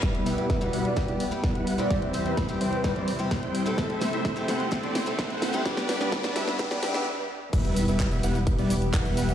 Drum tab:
CC |----------------|----------------|----------------|----------------|
HH |xxoxxxoxxxoxxxox|xxoxxxoxxxoxxxox|xxoxxxoxxxoxxxox|xxoxxxoxxxox----|
SH |----------------|----------------|----------------|----------------|
CP |----------------|----------------|----------------|----------------|
SD |o---o---o---o---|o---o---o---o---|o-o-o-o-o-o-o-o-|oooooooooooo----|
BD |o---o---o---o---|o---o---o---o---|o---o---o---o---|o---o---o-------|

CC |x---------------|
HH |xxoxxxoxxxoxxxox|
SH |xxxxxxxxxxxxxxxx|
CP |----x-------x---|
SD |----------------|
BD |o---o---o---o---|